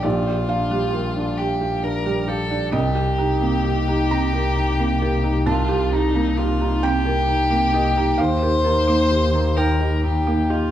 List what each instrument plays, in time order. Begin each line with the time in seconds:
Already playing: double bass A#1, felt piano D4
0.03 felt piano A#1 D5, violin F4, marimba G4
0.27 felt piano G4, marimba D5
0.49 felt piano D4 F5, marimba D5
0.70 felt piano G3, marimba G4
0.93 felt piano G4, marimba A#4
1.16 felt piano D4, marimba D5
1.38 violin G4, marimba G4
1.61 felt piano G4, marimba F5
1.83 felt piano D4, violin A#4
2.06 felt piano G3, marimba G4
2.28 felt piano G4, violin A4, marimba F5
2.50 felt piano D4, marimba D5
2.72 double bass C2, felt piano C2 D#5, marimba C4, violin G4
2.95 felt piano G4, marimba G4
3.18 felt piano D#4, marimba G4
3.41 felt piano A#3, marimba C4
3.64 marimba D#4, felt piano G4
3.88 felt piano D#4, marimba G4
4.11 marimba C4, felt piano A#5
4.34 felt piano G4, marimba A#4
4.56 felt piano D#4
4.79 felt piano A#3, marimba C4
5.02 felt piano G4, marimba A#4
5.24 felt piano D#4, marimba G4
5.46 felt piano C2 A5, marimba C4, violin F4
5.69 felt piano G4, marimba G4
5.92 felt piano D#4, violin D#4, marimba G4
6.15 felt piano A#3, marimba C4
6.37 marimba D#4, violin F4, felt piano G4
6.60 felt piano D#4, marimba G4
6.83 marimba C4, violin G4, felt piano G5
7.05 felt piano G4, marimba A#4
7.28 felt piano D#4
7.51 felt piano A#3, marimba C4
7.74 felt piano G4 D#5, marimba A#4
7.97 felt piano D#4, marimba G4
8.18 double bass D#2, felt piano D#2 F5, marimba D#4, violin C5
8.42 felt piano G4, marimba A#4
8.65 felt piano D#4, marimba A#4
8.88 felt piano A#3, marimba D#4
9.11 marimba G4, felt piano G4
9.34 felt piano D#4, marimba A#4
9.57 marimba D#4, violin A#4, felt piano G5
9.81 felt piano G4, marimba D#5
10.04 felt piano D#4, violin G4
10.27 felt piano A#3, marimba D#4
10.50 violin F4, felt piano G4, marimba D#5